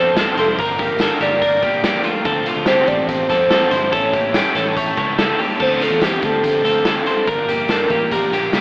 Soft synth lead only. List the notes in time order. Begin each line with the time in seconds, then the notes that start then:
Already playing: C5
0.39 A4
0.61 A#4
1.22 D5
2.67 C5
2.88 D5
3.08 C5
3.93 C#5
5.62 C5
5.83 A4
6.04 G4
6.25 A4
7.08 A4
7.29 A#4
8.12 G4